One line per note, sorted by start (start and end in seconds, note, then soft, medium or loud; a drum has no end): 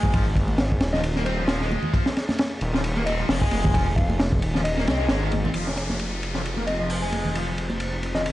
0.00 0.82 G#1 medium
0.00 0.12 G#3 medium
0.00 0.13 G#5 medium
0.00 kick medium
0.00 low conga medium
0.13 0.25 F3 medium
0.13 kick loud
0.13 ride medium
0.36 kick medium
0.36 ride medium
0.48 high conga medium
0.58 snare loud
0.58 ride medium
0.72 kick medium
0.80 1.77 D#1 medium
0.80 snare loud
0.80 ride medium
0.93 0.99 F3 loud
0.93 1.04 D#5 medium
0.93 snare medium
1.04 ride medium
1.15 1.21 A#3 medium
1.15 snare soft
1.15 high conga medium
1.25 1.37 C4 medium
1.25 1.34 C5 medium
1.25 ride medium
1.38 1.47 F3 medium
1.38 1.45 C5 medium
1.48 1.60 F3 medium
1.48 snare loud
1.48 ride medium
1.61 1.93 G#3 medium
1.61 snare soft
1.72 high conga medium
1.83 low conga medium
1.94 2.05 F3 medium
1.94 kick loud
1.94 ride medium
2.06 snare medium
2.17 snare medium
2.17 ride medium
2.29 snare soft
2.29 high conga medium
2.38 snare loud
2.38 ride medium
2.61 3.24 D#1 medium
2.61 ride medium
2.74 2.79 F3 loud
2.74 snare medium
2.84 ride medium
2.96 3.02 A#3 medium
2.96 high conga medium
3.06 3.18 C4 medium
3.06 3.14 D#5 medium
3.06 ride medium
3.18 3.28 F3 medium
3.18 3.25 D#5 medium
3.29 3.45 F1 medium
3.29 3.40 F3 medium
3.29 snare loud
3.29 open hi-hat medium
3.41 3.73 G#3 medium
3.41 3.73 G#5 medium
3.41 kick loud
3.51 4.43 F1 loud
3.51 ride medium
3.51 high conga medium
3.64 kick medium
3.64 low conga medium
3.74 3.86 F3 medium
3.74 3.82 G#5 medium
3.74 kick loud
3.74 ride medium
3.86 3.93 G#5 medium
3.96 4.10 F5 medium
3.96 kick medium
3.96 ride medium
4.10 high conga medium
4.20 snare loud
4.20 ride medium
4.32 kick medium
4.42 4.88 D#1 medium
4.42 ride medium
4.54 4.60 F3 loud
4.54 snare soft
4.64 5.28 D#5 loud
4.64 ride medium
4.77 4.82 A#3 medium
4.77 snare soft
4.77 high conga medium
4.87 5.09 C2 loud
4.87 4.98 C4 medium
4.87 snare loud
4.87 ride medium
4.99 5.05 G#3 medium
5.09 5.49 G#1 medium
5.09 5.21 G#3 medium
5.09 snare loud
5.09 ride medium
5.22 5.31 D#3 loud
5.32 ride medium
5.32 high conga medium
5.44 5.50 C4 medium
5.44 low conga medium
5.54 8.32 F1 medium
5.54 5.66 F3 medium
5.54 8.32 F4 medium
5.54 8.32 G#4 medium
5.54 8.32 C5 medium
5.54 ride medium
5.54 downlifter medium
5.67 snare medium
5.76 snare soft
5.76 ride medium
5.89 snare soft
5.89 high conga medium
5.99 ride medium
6.23 ride medium
6.34 6.40 F3 medium
6.34 snare soft
6.45 ride medium
6.57 6.62 A#3 medium
6.57 high conga medium
6.67 6.78 C4 medium
6.67 6.75 D#5 medium
6.67 ride medium
6.80 6.89 F3 medium
6.80 6.86 D#5 medium
6.90 7.01 F3 medium
6.90 open hi-hat medium
7.02 7.34 G#3 medium
7.02 7.35 G#5 medium
7.13 ride medium
7.13 high conga medium
7.25 low conga medium
7.35 7.47 F3 medium
7.35 ride medium
7.58 ride medium
7.70 high conga medium
7.80 ride medium
8.03 ride medium
8.15 8.20 F3 medium
8.15 8.26 D#5 medium
8.15 snare soft
8.26 ride medium